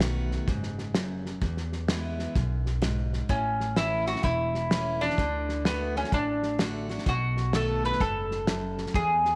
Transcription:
Already playing: B1 B2
0.00 D#3 A3 B3 F#4, snare, hi-hat pedal
0.32 snare
0.48 F#1 G#2, kick, snare
0.63 snare
0.78 snare
0.94 F#2, snare, hi-hat pedal
1.26 snare
1.41 E2, kick, snare
1.57 snare
1.72 snare
1.88 E3 G#3 B3 E4, snare, hi-hat pedal
2.19 snare
2.35 B1 F#2, kick, snare
2.66 snare
2.82 G#2, snare, hi-hat pedal
3.13 snare
3.29 A1 A2 C#4, kick, snare
3.60 snare
3.76 E3 A3 C#4 E4, snare, hi-hat pedal
4.07 C#4 E4 F#4, snare
4.16 snare
4.23 E1 E2 E4, kick, snare
4.55 snare
4.71 E3 A3 C#4 E4, snare, hi-hat pedal
5.01 C#4 D4 E4, snare
5.10 snare
5.18 D2 D3, kick, snare
5.49 snare
5.65 D3 A3 B3 D4 F#4, snare, hi-hat pedal
5.96 C#4, snare
6.04 snare
6.12 A1 A2 D4, kick, snare
6.43 snare
6.59 D3 A3 D4 F#4, snare, hi-hat pedal
6.89 D4 F#4, snare
6.98 snare
7.06 B1 B2 F#4, kick, snare
7.37 snare
7.53 D#3 A3 B3 F#4 A4, snare, hi-hat pedal
7.84 B4, snare
7.92 snare
8.00 F#1 G#2 A4, kick, snare
8.31 snare
8.47 F#2, snare, hi-hat pedal
8.78 snare
8.86 snare
8.94 E2 G#4, kick, snare
9.25 snare

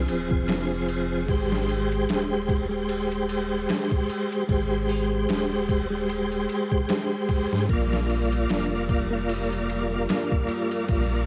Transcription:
Already playing: F3 C4 G#4
0.08 D#1, ride
0.31 F1, kick
0.48 snare, ride
0.88 ride
1.27 G#1 G#3 G4, kick, ride
1.31 C5
1.52 snare
1.69 ride
1.92 ride
2.09 D#1, snare, ride
2.49 kick, ride
2.69 G#3 G4
2.74 C5
2.89 ride
3.12 ride
3.29 ride
3.69 snare, ride
3.91 kick
4.09 ride
4.32 ride
4.47 G#1 G#3 G4, kick, ride
4.52 C5
4.89 open hi-hat
5.29 D#1, snare, ride
5.69 kick, ride
5.90 G#3 G4
5.95 C5
6.09 ride
6.32 ride
6.49 ride
6.72 kick
6.89 snare, ride
7.29 kick, ride
7.52 G#2, snare
7.68 A#1 G3 A#3 F4 A#4, kick, ride
7.73 D5
7.93 snare
8.10 ride
8.32 ride
8.49 F1, snare, ride
8.89 kick, ride
9.10 A#3 F4
9.15 D5
9.29 ride
9.53 ride
9.69 ride
10.09 snare, ride
10.32 kick
10.48 ride
10.71 ride
10.88 A#1 A#3 F4, kick, ride
10.92 D5

